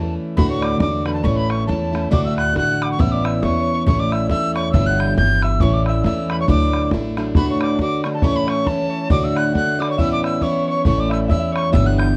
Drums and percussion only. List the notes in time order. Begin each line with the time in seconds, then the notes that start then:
0.38 bodhran
0.62 bodhran
0.80 bodhran
1.06 bodhran
1.24 bodhran
1.50 bodhran
1.69 bodhran
1.95 bodhran
2.13 bodhran
2.38 bodhran
2.56 bodhran
2.82 bodhran
3.00 bodhran
3.25 bodhran
3.43 bodhran
3.87 bodhran
4.12 bodhran
4.30 bodhran
4.56 bodhran
4.74 bodhran
5.00 bodhran
5.18 bodhran
5.42 bodhran
5.60 bodhran
5.86 bodhran
6.04 bodhran
6.30 bodhran
6.48 bodhran
6.73 bodhran
6.91 bodhran
7.17 bodhran
7.35 bodhran
7.61 bodhran
7.79 bodhran
8.04 bodhran
8.22 bodhran
8.48 bodhran
8.67 bodhran
9.10 bodhran
9.37 bodhran
9.55 bodhran
9.82 bodhran
9.99 bodhran
10.24 bodhran
10.41 bodhran
10.85 bodhran
11.11 bodhran
11.30 bodhran
11.56 bodhran
11.74 bodhran
11.99 bodhran